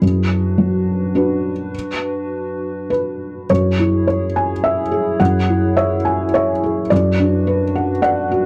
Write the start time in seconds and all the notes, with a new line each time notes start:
0.02 F#2 D4 F#4 B4
0.58 F#3
1.15 D4 F#4 B4
2.90 B4
3.50 F#2 E4 G#4 C#5
3.79 E4
4.07 C#5
4.36 G#5
4.64 E5
4.92 G#4
5.20 F#2 F#5
5.49 E4
5.77 C#5 E5
6.05 G#5
6.34 C#5 E5
6.63 G#4
6.90 F#2 D4 F#4 B4 D5
7.20 D4
7.47 B4
7.75 F#5
8.02 D5 F#5
8.32 F#4